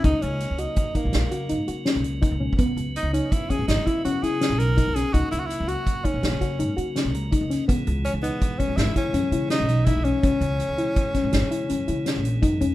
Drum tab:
HH |x--x--x--x--x--x--x--x--x--x--x--x--x-----|x--x--x--x--x--x--x--x--x--x--x--x--x--x--|x--x--x--x--x--x--x--x--x--x--x--x--x--x--|x--x--x--x--x--x--x--x--x--x--x--x--x--x--|
SD |------o-----------o-----------o-----------|------------------o--------o--o--------o--|------------------o--o--------o--------o--|------------------o-----------o--o--------|
T1 |---------------------------------------o--|------------------------------------------|------------------------------------------|------------------------------------------|
BD |o-----------o--o--------------------o----o|o-----------o--o-----o--------------o-----|o-----------o--o-----o--------------o-----|o-----------o--o-----o--------------o-----|

HH |x--x--x--x--x--x--x--x--x--x--x--x--x--x--|
SD |---------------o--o-----------o-----------|
T1 |------------------------------------------|
BD |o-----------o--o--------------------o-----|